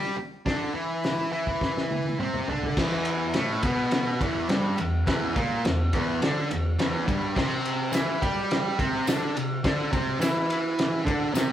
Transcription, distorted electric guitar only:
0.00 0.15 G3 medium
0.00 0.15 G4 loud
0.17 muted distorted electric guitar stroke medium
0.46 0.74 D3 medium
0.46 0.74 D4 loud
0.74 1.31 E3 loud
0.74 1.31 E4 loud
1.32 2.18 E3 medium
1.32 2.18 E4 loud
2.19 2.47 C3 medium
2.19 2.47 C4 medium
2.49 2.76 D3 medium
2.49 2.77 D4 loud
2.77 3.34 E2 medium
2.77 3.34 E3 loud
3.35 3.63 A2 medium
3.35 3.65 A3 loud
3.63 4.20 B2 loud
3.63 4.20 B3 loud
4.21 4.49 E2 loud
4.21 4.49 E3 loud
4.49 4.77 G2 medium
4.49 4.77 G3 loud
4.78 5.01 E2 medium
5.06 5.34 E2 medium
5.06 5.34 E3 loud
5.35 5.63 A#2 loud
5.35 5.63 A#3 loud
5.65 5.87 E2 medium
5.93 6.21 E2 medium
5.93 6.21 E3 loud
6.22 6.49 D3 loud
6.22 6.50 D4 loud
6.51 6.73 E2 medium
6.79 7.06 E2 loud
6.79 7.07 E3 loud
7.07 7.35 G2 medium
7.07 7.35 G3 loud
7.36 7.92 C3 medium
7.36 7.92 C4 loud
7.92 8.20 E3 medium
7.92 8.21 E4 medium
8.21 8.77 G3 loud
8.21 8.78 G4 loud
8.78 9.06 C3 loud
8.78 9.06 C4 loud
9.07 9.35 D3 medium
9.07 9.35 D4 loud
9.36 9.58 C3 medium
9.64 9.91 D3 loud
9.64 9.92 D4 loud
9.92 10.19 C3 loud
9.92 10.20 C4 loud
10.20 11.04 E3 loud
10.20 11.05 E4 loud
11.05 11.33 D3 loud
11.05 11.34 D4 loud
11.34 11.52 C3 medium
11.34 11.52 C4 loud

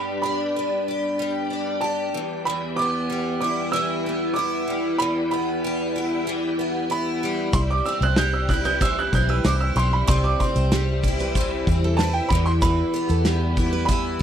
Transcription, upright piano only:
0.00 0.20 B5 loud
0.22 1.46 B5 medium
1.81 2.47 A5 medium
2.45 2.78 B5 medium
2.77 3.39 D6 loud
3.41 3.73 D6 medium
3.72 4.38 E6 loud
4.34 5.00 D6 medium
4.98 5.30 B5 loud
5.31 6.54 B5 medium
6.91 7.56 B5 medium
7.53 7.58 C6 medium
7.70 7.86 D6 loud
7.86 8.02 E6 medium
8.03 8.18 F#6 loud
8.18 8.34 G6 loud
8.34 8.48 E6 medium
8.49 8.65 F#6 medium
8.65 8.70 G6 loud
8.82 8.97 E6 loud
8.99 9.14 F#6 medium
9.15 9.30 G6 medium
9.30 9.35 E6 medium
9.46 9.51 D6 medium
9.61 9.66 E6 medium
9.77 9.93 C6 medium
9.93 10.09 B5 medium
10.08 10.24 C6 medium
10.24 10.40 D6 medium
10.40 11.63 C6 medium
11.97 12.14 A5 loud
12.13 12.28 G5 medium
12.29 12.46 B5 loud
12.46 12.51 C6 loud
12.62 13.84 B5 loud
13.85 14.22 B5 loud

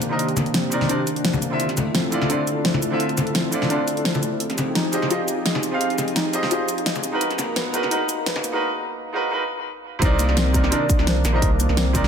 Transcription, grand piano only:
0.09 0.24 C3 medium
0.09 0.24 C4 medium
0.09 0.25 D#4 medium
0.09 0.25 A#4 medium
0.09 0.25 D#5 medium
0.70 0.86 C3 medium
0.70 0.87 C4 medium
0.70 0.87 D#4 medium
0.70 0.88 A#4 medium
0.70 0.88 D5 medium
0.88 0.98 C3 medium
0.88 0.98 C4 medium
0.88 0.99 D#4 medium
0.88 0.99 A#4 medium
0.88 0.99 D5 medium
1.50 1.64 D3 medium
1.50 1.65 C4 medium
1.50 1.65 E4 medium
1.50 1.65 F4 medium
1.50 1.66 E5 medium
2.11 2.27 D3 medium
2.11 2.27 C4 medium
2.11 2.28 E4 medium
2.11 2.28 F4 medium
2.11 2.29 D5 medium
2.28 2.38 D3 medium
2.28 2.39 C4 medium
2.28 2.39 E4 medium
2.28 2.40 F4 medium
2.28 2.40 D5 medium
2.90 3.05 D3 medium
2.90 3.05 C4 medium
2.90 3.06 E4 medium
2.90 3.06 F4 medium
2.90 3.06 E5 medium
3.51 3.67 D3 medium
3.51 3.68 C4 medium
3.51 3.68 E4 medium
3.51 3.69 F4 medium
3.51 3.69 D5 medium
3.68 3.79 D3 medium
3.68 3.79 C4 medium
3.68 3.79 E4 medium
3.68 3.80 F4 medium
3.68 3.80 D5 medium
4.91 5.07 F3 medium
4.91 5.08 C4 medium
4.91 5.09 G4 medium
4.91 5.09 G#4 medium
4.91 5.09 D#5 medium
5.09 5.19 F3 medium
5.09 5.19 C4 medium
5.09 5.20 G4 medium
5.09 5.20 G#4 medium
5.09 5.21 D#5 medium
5.71 5.85 F3 medium
5.71 5.86 C4 medium
5.71 5.86 G4 medium
5.71 5.87 G#4 medium
5.71 5.87 F5 medium
6.32 6.48 F3 medium
6.32 6.49 C4 medium
6.32 6.49 G4 medium
6.32 6.49 G#4 medium
6.32 6.50 D#5 medium
6.49 6.59 F3 medium
6.49 6.60 C4 medium
6.49 6.60 G4 medium
6.49 6.61 G#4 medium
6.49 6.61 D#5 medium
7.12 7.26 G#3 medium
7.12 7.26 D#4 medium
7.12 7.27 F#4 medium
7.12 7.27 A#4 medium
7.12 7.27 B4 medium
7.72 7.88 G#3 medium
7.72 7.89 D#4 medium
7.72 7.89 F#4 medium
7.72 7.90 A#4 medium
7.72 7.90 B4 medium
7.90 8.00 G#3 medium
7.90 8.00 D#4 medium
7.90 8.01 F#4 medium
7.90 8.01 A#4 medium
7.90 8.01 B4 medium
8.52 8.66 G#3 medium
8.52 8.66 D#4 medium
8.52 8.67 F#4 medium
8.52 8.67 A#4 medium
8.52 8.68 B4 medium
9.13 9.29 G#3 medium
9.13 9.29 D#4 medium
9.13 9.30 F#4 medium
9.13 9.30 A#4 medium
9.13 9.30 B4 medium
9.30 9.40 G#3 medium
9.30 9.41 D#4 medium
9.30 9.41 F#4 medium
9.30 9.41 A#4 medium
9.30 9.42 B4 medium
9.99 10.50 C3 loud
9.99 10.50 C4 medium
9.99 10.51 D#4 medium
10.04 10.52 A#4 medium
10.04 10.53 D5 loud
10.53 10.69 C3 medium
10.53 10.70 C4 medium
10.53 10.70 D#4 medium
10.53 10.70 A#4 medium
10.53 10.71 D5 medium
10.71 10.81 C3 medium
10.71 10.81 C4 medium
10.71 10.81 D#4 medium
10.71 10.82 A#4 medium
10.71 10.82 D5 medium
11.32 11.47 C3 medium
11.32 11.47 C4 medium
11.32 11.48 D#4 medium
11.32 11.48 A#4 medium
11.32 11.48 D#5 medium
11.93 12.08 C3 medium
11.93 12.08 C4 medium
11.93 12.08 D#4 medium
11.93 12.08 A#4 medium
11.93 12.08 D5 medium

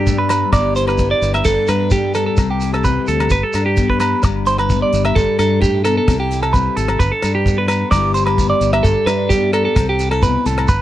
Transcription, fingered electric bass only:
0.00 0.43 G2 medium
0.52 1.12 G1 loud
1.22 1.42 G1 medium
1.46 1.56 G1 medium
1.69 2.28 G2 medium
2.38 2.98 C2 loud
3.08 3.28 D2 medium
3.31 3.41 G1 medium
3.54 4.14 G2 medium
4.24 4.83 G1 medium
4.93 5.13 G1 medium
5.16 5.26 G1 medium
5.39 5.98 G2 medium
6.08 6.68 C2 loud
6.77 6.97 G#1 medium
7.00 7.10 G1 medium
7.23 7.83 G2 medium
7.92 8.52 G1 loud
8.61 8.81 G1 medium
8.85 8.95 G1 loud
9.06 9.66 G2 medium
9.76 10.36 C2 medium
10.46 10.66 C2 loud
10.69 10.79 G1 medium

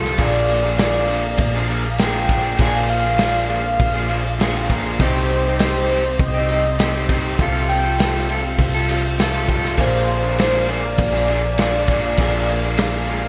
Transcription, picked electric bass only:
0.00 0.15 C2 medium
0.18 1.35 A#1 loud
1.38 2.55 A#1 medium
2.60 3.76 A#1 medium
3.80 4.96 A#1 loud
4.99 6.16 C2 loud
6.20 7.36 C2 medium
7.39 8.55 C2 loud
8.59 9.75 C2 medium
9.78 10.95 A#1 loud
10.98 12.15 A#1 medium
12.18 13.28 A#1 loud

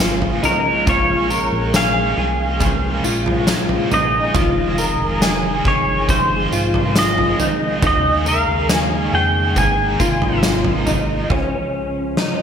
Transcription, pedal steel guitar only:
0.45 0.85 A#4 medium
0.89 1.76 C#5 medium
1.76 3.02 F5 loud
3.94 5.72 D#5 medium
5.68 6.09 C#5 medium
6.10 6.99 C5 medium
6.99 7.80 D#5 medium
7.87 8.28 D#5 loud
8.29 9.14 F5 medium
9.15 9.58 G5 loud
9.58 10.40 G#5 loud

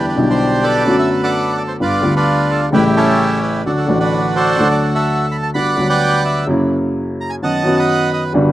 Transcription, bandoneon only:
0.00 0.84 D4 medium
0.00 0.28 G4 medium
0.08 0.18 B4 medium
0.30 0.83 G4 medium
0.30 0.65 C5 loud
0.63 1.22 A4 medium
0.63 1.52 B4 medium
0.63 0.96 D5 loud
0.99 1.09 E5 medium
1.23 1.77 A4 medium
1.23 1.56 D5 medium
1.23 1.59 F#5 medium
1.58 1.63 D5 medium
1.68 1.73 C5 medium
1.81 2.15 F4 medium
1.81 2.15 B4 medium
1.81 2.13 D5 medium
2.16 2.69 D4 medium
2.16 2.69 F4 medium
2.16 2.51 B4 loud
2.51 2.61 A4 medium
2.73 2.95 E4 medium
2.73 3.62 G4 medium
2.73 2.84 B4 loud
2.96 3.62 C#4 medium
2.96 3.62 E4 medium
2.96 3.39 A4 loud
3.43 3.64 B4 medium
3.66 3.99 D4 medium
3.66 3.99 F#4 medium
3.66 3.71 A4 medium
3.77 3.88 A4 medium
4.00 4.90 D4 medium
4.00 4.34 F#4 medium
4.00 4.36 B4 loud
4.36 5.26 F#4 medium
4.36 4.94 A4 medium
4.36 4.68 C5 loud
4.71 4.82 D5 medium
4.95 5.50 A4 medium
4.95 5.28 E5 medium
5.32 5.37 B5 medium
5.43 5.48 A5 medium
5.54 5.88 D5 medium
5.54 6.45 F#5 medium
5.54 5.87 B5 loud
5.90 6.45 B4 medium
5.90 6.45 D5 medium
5.90 6.23 G5 loud
6.25 6.47 E5 medium
7.21 7.31 A#5 medium
7.30 7.35 G#5 medium
7.43 7.77 D#5 medium
7.43 7.75 F#5 medium
7.43 7.79 A5 medium
7.77 8.33 B4 medium
7.77 8.12 D#5 medium
7.77 8.10 F#5 loud
8.13 8.24 D#5 medium

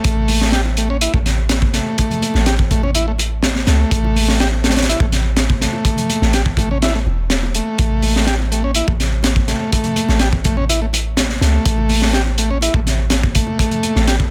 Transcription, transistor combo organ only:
0.05 0.52 A3 loud
0.53 0.61 G4 loud
0.78 0.89 A3 medium
0.90 0.97 C#4 loud
1.02 1.13 E4 loud
1.14 1.18 A3 medium
1.75 1.97 A3 medium
1.98 2.45 A3 loud
2.47 2.55 G4 loud
2.71 2.82 A3 medium
2.83 2.91 C#4 loud
2.95 3.06 E4 loud
3.08 3.12 A3 medium
3.68 3.91 A3 medium
3.92 4.39 A3 loud
4.40 4.48 G4 loud
4.64 4.75 A3 medium
4.77 4.84 C#4 loud
4.89 5.00 E4 loud
5.02 5.06 A3 medium
5.61 5.84 A3 medium
5.86 6.33 A3 loud
6.34 6.42 G4 loud
6.58 6.69 A3 medium
6.71 6.78 C#4 loud
6.83 6.93 E4 loud
6.95 6.99 A3 medium
7.55 7.78 A3 medium
7.79 8.26 A3 loud
8.27 8.35 G4 loud
8.52 8.63 A3 medium
8.64 8.71 C#4 loud
8.76 8.87 E4 loud
8.88 8.92 A3 medium
9.48 9.71 A3 medium
9.73 10.20 A3 loud
10.21 10.28 G4 loud
10.45 10.56 A3 medium
10.57 10.65 C#4 loud
10.69 10.80 E4 loud
10.82 10.86 A3 medium
11.42 11.65 A3 medium
11.66 12.13 A3 loud
12.14 12.22 G4 loud
12.39 12.50 A3 medium
12.51 12.58 C#4 loud
12.62 12.74 E4 loud
12.76 12.80 A3 medium
13.36 13.58 A3 medium
13.59 14.07 A3 loud
14.08 14.16 G4 loud

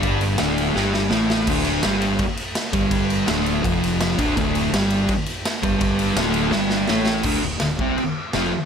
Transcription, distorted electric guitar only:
0.00 0.39 G2 loud
0.00 0.39 G3 loud
0.39 0.75 D2 medium
0.39 0.75 D3 medium
0.75 1.10 G2 medium
0.75 1.11 G3 medium
1.10 1.47 A2 medium
1.10 1.47 A3 loud
1.49 1.83 D2 medium
1.49 1.84 D3 loud
1.83 2.19 G2 medium
1.83 2.20 G3 loud
2.73 3.26 G2 medium
2.73 3.27 G3 loud
3.26 3.62 D2 medium
3.26 3.63 D3 medium
3.63 4.17 F2 medium
3.63 4.17 F3 loud
4.18 4.36 D2 medium
4.18 4.36 D3 loud
4.38 4.73 D2 medium
4.38 4.73 D3 loud
4.74 5.09 G2 medium
4.74 5.09 G3 loud
5.62 6.16 G2 loud
5.62 6.16 G3 loud
6.18 6.52 D2 medium
6.18 6.53 D3 loud
6.52 6.88 G2 loud
6.52 6.89 G3 loud
6.89 7.25 A2 medium
6.89 7.25 A3 loud
7.25 7.42 D2 medium
7.25 7.43 D3 medium
7.44 7.58 D2 medium
7.61 7.76 D2 medium
7.80 7.98 C3 medium
7.80 7.98 C4 loud
7.98 muted distorted electric guitar stroke medium
8.34 8.51 F2 medium
8.34 8.52 F3 loud

